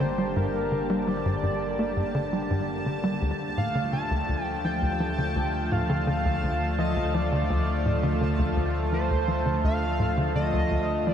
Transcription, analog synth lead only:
0, 0, Header, 1, 2, 480
1, 0, Start_track
1, 0, Tempo, 714286
1, 243, Time_signature, 4, 2, 24, 8
1, 7485, End_track
2, 0, Start_track
2, 0, Title_t, "Analog synth lead"
2, 0, Program_c, 0, 81
2, 0, Note_on_c, 0, 72, 99
2, 241, Note_on_c, 0, 70, 101
2, 251, Note_off_c, 0, 72, 0
2, 719, Note_on_c, 0, 74, 95
2, 730, Note_off_c, 0, 70, 0
2, 1921, Note_off_c, 0, 74, 0
2, 2401, Note_on_c, 0, 77, 101
2, 2625, Note_off_c, 0, 77, 0
2, 2641, Note_on_c, 0, 81, 116
2, 2977, Note_off_c, 0, 81, 0
2, 2977, Note_on_c, 0, 79, 116
2, 3095, Note_off_c, 0, 79, 0
2, 3122, Note_on_c, 0, 79, 109
2, 3842, Note_on_c, 0, 77, 115
2, 3853, Note_off_c, 0, 79, 0
2, 4560, Note_on_c, 0, 75, 93
2, 4570, Note_off_c, 0, 77, 0
2, 4798, Note_on_c, 0, 74, 95
2, 4808, Note_off_c, 0, 75, 0
2, 5760, Note_off_c, 0, 74, 0
2, 6005, Note_on_c, 0, 72, 107
2, 6457, Note_off_c, 0, 72, 0
2, 6484, Note_on_c, 0, 77, 117
2, 6936, Note_off_c, 0, 77, 0
2, 6959, Note_on_c, 0, 75, 111
2, 7441, Note_on_c, 0, 74, 101
2, 7451, Note_off_c, 0, 75, 0
2, 7485, Note_off_c, 0, 74, 0
2, 7485, End_track
0, 0, End_of_file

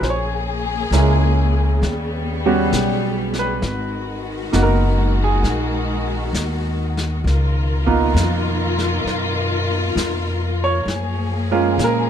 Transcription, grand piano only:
0, 0, Header, 1, 2, 480
1, 0, Start_track
1, 0, Tempo, 906344
1, 12, Time_signature, 4, 2, 24, 8
1, 6407, End_track
2, 0, Start_track
2, 0, Title_t, "Grand piano"
2, 0, Program_c, 0, 0
2, 0, Control_c, 0, 64, 127
2, 19, Control_c, 0, 64, 0
2, 22, Note_on_c, 0, 72, 47
2, 52, Note_off_c, 0, 72, 0
2, 53, Note_on_c, 0, 73, 67
2, 119, Control_c, 0, 64, 127
2, 492, Note_on_c, 0, 58, 48
2, 493, Note_on_c, 0, 56, 59
2, 494, Note_on_c, 0, 61, 45
2, 497, Note_on_c, 0, 64, 54
2, 787, Note_off_c, 0, 56, 0
2, 787, Note_off_c, 0, 58, 0
2, 787, Note_off_c, 0, 61, 0
2, 789, Note_off_c, 0, 64, 0
2, 817, Note_off_c, 0, 73, 0
2, 974, Control_c, 0, 64, 0
2, 1063, Control_c, 0, 64, 127
2, 1302, Note_on_c, 0, 55, 63
2, 1305, Note_on_c, 0, 59, 55
2, 1305, Note_on_c, 0, 61, 55
2, 1305, Note_on_c, 0, 66, 68
2, 1434, Note_off_c, 0, 55, 0
2, 1435, Note_off_c, 0, 61, 0
2, 1436, Note_off_c, 0, 59, 0
2, 1436, Note_off_c, 0, 66, 0
2, 1796, Note_on_c, 0, 71, 67
2, 1932, Control_c, 0, 64, 0
2, 2037, Control_c, 0, 64, 127
2, 2394, Note_off_c, 0, 71, 0
2, 2397, Note_on_c, 0, 58, 55
2, 2401, Note_on_c, 0, 59, 51
2, 2401, Note_on_c, 0, 63, 51
2, 2405, Note_on_c, 0, 66, 63
2, 2449, Note_on_c, 0, 70, 73
2, 2746, Note_off_c, 0, 70, 0
2, 2774, Note_on_c, 0, 68, 77
2, 2900, Note_off_c, 0, 68, 0
2, 3142, Note_off_c, 0, 58, 0
2, 3144, Note_off_c, 0, 59, 0
2, 3144, Note_off_c, 0, 63, 0
2, 3146, Note_off_c, 0, 66, 0
2, 3847, Control_c, 0, 64, 0
2, 3930, Control_c, 0, 64, 127
2, 4165, Note_on_c, 0, 58, 59
2, 4166, Note_on_c, 0, 65, 59
2, 4167, Note_on_c, 0, 59, 50
2, 4170, Note_on_c, 0, 63, 56
2, 4769, Note_off_c, 0, 58, 0
2, 4769, Note_off_c, 0, 65, 0
2, 4770, Note_off_c, 0, 59, 0
2, 4771, Note_off_c, 0, 63, 0
2, 5634, Note_on_c, 0, 73, 81
2, 5773, Control_c, 0, 64, 0
2, 5881, Control_c, 0, 64, 127
2, 6098, Note_on_c, 0, 56, 63
2, 6100, Note_on_c, 0, 65, 75
2, 6101, Note_on_c, 0, 58, 51
2, 6101, Note_on_c, 0, 61, 60
2, 6236, Note_off_c, 0, 73, 0
2, 6271, Note_on_c, 0, 70, 76
2, 6407, Note_off_c, 0, 56, 0
2, 6407, Note_off_c, 0, 58, 0
2, 6407, Note_off_c, 0, 61, 0
2, 6407, Note_off_c, 0, 65, 0
2, 6407, Note_off_c, 0, 70, 0
2, 6407, End_track
0, 0, End_of_file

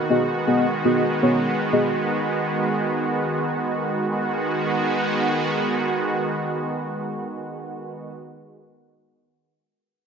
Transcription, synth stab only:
0, 0, Header, 1, 2, 480
1, 0, Start_track
1, 0, Key_signature, 5, "minor"
1, 0, Tempo, 500000
1, 9660, End_track
2, 0, Start_track
2, 0, Title_t, "Synth stab"
2, 0, Program_c, 0, 62
2, 93, Note_on_c, 0, 59, 93
2, 95, Note_on_c, 0, 66, 84
2, 96, Note_on_c, 0, 68, 84
2, 98, Note_on_c, 0, 75, 100
2, 279, Note_off_c, 0, 59, 0
2, 280, Note_off_c, 0, 66, 0
2, 281, Note_off_c, 0, 68, 0
2, 282, Note_off_c, 0, 75, 0
2, 453, Note_on_c, 0, 59, 91
2, 455, Note_on_c, 0, 66, 87
2, 457, Note_on_c, 0, 68, 81
2, 458, Note_on_c, 0, 75, 105
2, 639, Note_off_c, 0, 59, 0
2, 640, Note_off_c, 0, 66, 0
2, 641, Note_off_c, 0, 68, 0
2, 642, Note_off_c, 0, 75, 0
2, 814, Note_on_c, 0, 59, 88
2, 815, Note_on_c, 0, 66, 81
2, 817, Note_on_c, 0, 68, 85
2, 819, Note_on_c, 0, 75, 95
2, 999, Note_off_c, 0, 59, 0
2, 1000, Note_off_c, 0, 66, 0
2, 1001, Note_off_c, 0, 68, 0
2, 1002, Note_off_c, 0, 75, 0
2, 1175, Note_on_c, 0, 59, 92
2, 1176, Note_on_c, 0, 66, 82
2, 1178, Note_on_c, 0, 68, 80
2, 1180, Note_on_c, 0, 73, 100
2, 1421, Note_off_c, 0, 59, 0
2, 1422, Note_off_c, 0, 66, 0
2, 1423, Note_off_c, 0, 68, 0
2, 1424, Note_off_c, 0, 73, 0
2, 1654, Note_on_c, 0, 59, 87
2, 1655, Note_on_c, 0, 66, 74
2, 1657, Note_on_c, 0, 68, 79
2, 1659, Note_on_c, 0, 75, 97
2, 1839, Note_off_c, 0, 59, 0
2, 1840, Note_off_c, 0, 66, 0
2, 1841, Note_off_c, 0, 68, 0
2, 1842, Note_off_c, 0, 75, 0
2, 9660, End_track
0, 0, End_of_file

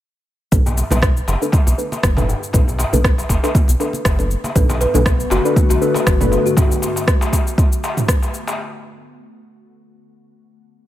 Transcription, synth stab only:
0, 0, Header, 1, 2, 480
1, 0, Start_track
1, 0, Key_signature, 2, "minor"
1, 0, Tempo, 504202
1, 496, Time_signature, 4, 2, 24, 8
1, 10349, End_track
2, 0, Start_track
2, 0, Title_t, "Synth stab"
2, 0, Program_c, 0, 62
2, 495, Note_on_c, 0, 62, 84
2, 495, Note_on_c, 0, 69, 76
2, 495, Note_on_c, 0, 71, 92
2, 836, Note_off_c, 0, 62, 0
2, 836, Note_off_c, 0, 69, 0
2, 836, Note_off_c, 0, 71, 0
2, 868, Note_on_c, 0, 62, 88
2, 868, Note_on_c, 0, 69, 80
2, 868, Note_on_c, 0, 71, 96
2, 926, Note_off_c, 0, 62, 0
2, 926, Note_off_c, 0, 69, 0
2, 926, Note_off_c, 0, 71, 0
2, 1348, Note_on_c, 0, 62, 94
2, 1348, Note_on_c, 0, 69, 85
2, 1348, Note_on_c, 0, 71, 102
2, 1441, Note_off_c, 0, 62, 0
2, 1441, Note_off_c, 0, 69, 0
2, 1441, Note_off_c, 0, 71, 0
2, 1695, Note_on_c, 0, 69, 77
2, 1695, Note_on_c, 0, 71, 96
2, 1696, Note_on_c, 0, 62, 85
2, 2037, Note_off_c, 0, 62, 0
2, 2037, Note_off_c, 0, 69, 0
2, 2037, Note_off_c, 0, 71, 0
2, 2068, Note_on_c, 0, 62, 79
2, 2068, Note_on_c, 0, 69, 73
2, 2068, Note_on_c, 0, 71, 90
2, 2390, Note_off_c, 0, 62, 0
2, 2390, Note_off_c, 0, 69, 0
2, 2390, Note_off_c, 0, 71, 0
2, 2416, Note_on_c, 0, 62, 83
2, 2416, Note_on_c, 0, 69, 75
2, 2417, Note_on_c, 0, 71, 90
2, 2757, Note_off_c, 0, 62, 0
2, 2757, Note_off_c, 0, 69, 0
2, 2757, Note_off_c, 0, 71, 0
2, 2789, Note_on_c, 0, 62, 91
2, 2789, Note_on_c, 0, 69, 79
2, 2789, Note_on_c, 0, 71, 99
2, 2846, Note_off_c, 0, 71, 0
2, 2847, Note_off_c, 0, 62, 0
2, 2847, Note_off_c, 0, 69, 0
2, 3268, Note_on_c, 0, 69, 87
2, 3269, Note_on_c, 0, 62, 98
2, 3269, Note_on_c, 0, 71, 103
2, 3361, Note_off_c, 0, 62, 0
2, 3361, Note_off_c, 0, 69, 0
2, 3361, Note_off_c, 0, 71, 0
2, 3615, Note_on_c, 0, 62, 88
2, 3615, Note_on_c, 0, 69, 79
2, 3616, Note_on_c, 0, 71, 94
2, 3957, Note_off_c, 0, 62, 0
2, 3957, Note_off_c, 0, 69, 0
2, 3957, Note_off_c, 0, 71, 0
2, 3988, Note_on_c, 0, 62, 81
2, 3988, Note_on_c, 0, 69, 75
2, 3988, Note_on_c, 0, 71, 90
2, 4310, Note_off_c, 0, 62, 0
2, 4310, Note_off_c, 0, 69, 0
2, 4310, Note_off_c, 0, 71, 0
2, 4336, Note_on_c, 0, 62, 85
2, 4336, Note_on_c, 0, 71, 94
2, 4337, Note_on_c, 0, 69, 77
2, 4677, Note_off_c, 0, 62, 0
2, 4677, Note_off_c, 0, 69, 0
2, 4677, Note_off_c, 0, 71, 0
2, 4708, Note_on_c, 0, 69, 77
2, 4709, Note_on_c, 0, 62, 88
2, 4709, Note_on_c, 0, 71, 99
2, 4766, Note_off_c, 0, 62, 0
2, 4766, Note_off_c, 0, 69, 0
2, 4767, Note_off_c, 0, 71, 0
2, 5189, Note_on_c, 0, 62, 95
2, 5189, Note_on_c, 0, 69, 86
2, 5189, Note_on_c, 0, 71, 104
2, 5281, Note_off_c, 0, 62, 0
2, 5281, Note_off_c, 0, 69, 0
2, 5281, Note_off_c, 0, 71, 0
2, 5535, Note_on_c, 0, 62, 88
2, 5535, Note_on_c, 0, 69, 81
2, 5535, Note_on_c, 0, 71, 94
2, 5876, Note_off_c, 0, 62, 0
2, 5876, Note_off_c, 0, 71, 0
2, 5877, Note_off_c, 0, 69, 0
2, 5908, Note_on_c, 0, 62, 84
2, 5908, Note_on_c, 0, 69, 75
2, 5908, Note_on_c, 0, 71, 94
2, 6230, Note_off_c, 0, 62, 0
2, 6230, Note_off_c, 0, 69, 0
2, 6230, Note_off_c, 0, 71, 0
2, 10349, End_track
0, 0, End_of_file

